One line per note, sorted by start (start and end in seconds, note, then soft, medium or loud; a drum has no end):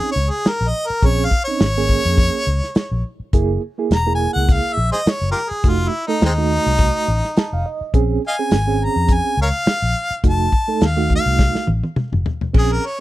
0.00 0.16 C4 medium
0.00 0.16 C#4 medium
0.00 0.17 D#4 medium
0.12 0.32 C#5 medium
0.16 0.29 C#2 medium
0.31 0.51 G#4 medium
0.45 0.70 A#4 medium
0.45 muted fingered electric bass stroke soft
0.45 snare loud
0.45 closed hi-hat medium
0.61 0.71 A#1 medium
0.68 0.88 D#5 medium
0.87 1.07 A#4 medium
0.87 muted fingered electric bass stroke soft
1.03 1.26 A#1 medium
1.03 1.30 C4 medium
1.03 1.30 C#4 medium
1.03 1.30 G#4 medium
1.03 1.27 C#5 medium
1.03 kick loud
1.03 closed hi-hat medium
1.25 1.42 F5 medium
1.31 kick medium
1.44 1.64 C4 medium
1.44 1.65 C#4 medium
1.44 3.11 C#5 loud
1.49 1.65 D#4 medium
1.60 1.96 G#1 medium
1.60 snare loud
1.60 closed hi-hat medium
1.77 2.47 A#3 medium
1.77 2.47 C#4 medium
1.77 2.47 G#4 medium
1.89 kick medium
2.05 2.28 F2 medium
2.17 kick loud
2.17 closed hi-hat medium
2.47 2.60 C#2 medium
2.64 snare soft
2.75 muted fingered electric bass stroke soft
2.75 snare loud
2.75 closed hi-hat medium
2.91 3.02 A#1 medium
3.20 muted fingered electric bass stroke soft
3.33 3.56 F#1 medium
3.33 3.60 A#3 medium
3.33 3.61 E4 medium
3.33 3.61 G#4 medium
3.33 kick loud
3.33 closed hi-hat medium
3.78 3.95 A#3 medium
3.78 3.95 E4 medium
3.78 3.95 G#4 medium
3.90 4.26 E1 medium
3.90 4.11 A#5 loud
3.90 snare loud
3.90 closed hi-hat medium
4.06 4.76 A#3 medium
4.06 4.77 E4 medium
4.06 4.77 G#4 medium
4.15 4.31 G#5 medium
4.33 4.59 C#2 medium
4.33 4.55 F#5 medium
4.49 kick loud
4.49 closed hi-hat medium
4.53 4.74 F5 medium
4.73 4.89 E5 medium
4.77 4.90 A#1 medium
4.92 5.00 G#4 medium
4.92 5.01 C5 medium
4.92 5.13 D#5 loud
4.92 snare soft
5.06 muted fingered electric bass stroke soft
5.06 snare loud
5.06 closed hi-hat medium
5.11 5.27 C#5 loud
5.21 5.32 F#1 medium
5.31 5.38 F4 medium
5.31 5.40 G4 medium
5.31 5.51 A#4 loud
5.37 snare soft
5.50 5.71 G#4 medium
5.50 muted fingered electric bass stroke soft
5.64 5.87 F1 medium
5.64 5.90 A3 medium
5.64 5.91 D#4 medium
5.64 5.91 F#4 medium
5.64 kick loud
5.64 closed hi-hat medium
5.69 5.89 F4 medium
5.88 6.04 E4 medium
6.07 6.25 A3 medium
6.07 6.23 D#4 medium
6.07 6.25 D#4 medium
6.07 6.25 A4 medium
6.21 6.57 D#2 medium
6.21 6.33 G#3 medium
6.21 6.32 C4 medium
6.21 7.92 D#4 loud
6.21 snare loud
6.21 closed hi-hat medium
6.38 7.07 A3 medium
6.38 7.07 D#4 medium
6.38 7.08 F#4 medium
6.66 6.89 C2 medium
6.79 kick loud
6.79 closed hi-hat medium
7.08 7.21 A1 medium
7.25 snare soft
7.37 7.51 A5 medium
7.37 muted fingered electric bass stroke soft
7.37 snare loud
7.37 closed hi-hat medium
7.53 7.63 F1 medium
7.53 7.65 F5 medium
7.66 7.92 D#5 medium
7.81 muted fingered electric bass stroke soft
7.94 8.17 A#1 medium
7.94 8.21 C4 medium
7.94 8.21 C#4 medium
7.94 8.21 G#4 loud
7.94 kick loud
7.94 closed hi-hat medium
8.28 8.35 D#5 medium
8.28 8.36 F5 medium
8.28 8.86 G#5 loud
8.39 8.55 C4 medium
8.39 8.56 C#4 medium
8.39 8.56 G#4 medium
8.51 8.87 G#1 medium
8.51 snare loud
8.51 closed hi-hat medium
8.67 9.37 C4 medium
8.67 9.37 C#4 medium
8.67 9.37 G#4 medium
8.84 9.15 A#5 medium
8.96 9.19 F2 medium
9.08 kick loud
9.08 closed hi-hat medium
9.13 9.39 G#5 loud
9.37 9.50 C#2 medium
9.42 9.48 A#4 medium
9.42 9.49 C#5 medium
9.42 10.24 F5 loud
9.66 muted fingered electric bass stroke soft
9.66 snare loud
9.66 closed hi-hat medium
9.82 9.93 A#1 medium
10.11 muted fingered electric bass stroke soft
10.24 10.47 F1 medium
10.24 10.51 A3 medium
10.24 10.51 D#4 medium
10.24 10.51 F#4 medium
10.24 kick loud
10.24 closed hi-hat medium
10.29 10.87 A5 loud
10.52 kick medium
10.68 10.85 A3 medium
10.68 10.85 D#4 medium
10.68 10.85 A4 medium
10.81 11.17 D#2 medium
10.81 snare loud
10.81 closed hi-hat medium
10.85 11.11 F5 loud
10.97 11.67 A3 medium
10.97 11.67 D#4 medium
10.97 11.67 F#4 medium
11.10 kick medium
11.15 11.69 F5 loud
11.26 11.49 C2 medium
11.39 kick loud
11.39 snare medium
11.55 snare medium
11.67 11.81 A1 medium
11.67 high tom medium
11.83 high tom medium
11.96 muted fingered electric bass stroke soft
11.96 mid tom medium
12.12 12.23 F1 medium
12.12 mid tom medium
12.26 floor tom loud
12.41 muted fingered electric bass stroke soft
12.41 floor tom medium
12.53 12.78 A#1 medium
12.53 12.81 C4 medium
12.53 12.81 C#4 medium
12.53 12.81 G#4 medium
12.53 kick loud
12.53 crash loud
12.58 12.73 G#4 medium
12.72 12.87 A#4 medium
12.86 13.00 C#5 medium